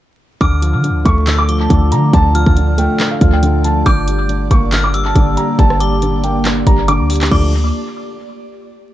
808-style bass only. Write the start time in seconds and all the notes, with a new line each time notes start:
0.41 D2
0.74 D3
0.90 D2
1.05 D2
1.70 D2
1.92 D3
2.13 D2
2.46 D2
3.21 D2
3.86 G1
4.51 G1
5.16 G1
5.59 G1
6.67 G1
7.00 D2
7.31 D2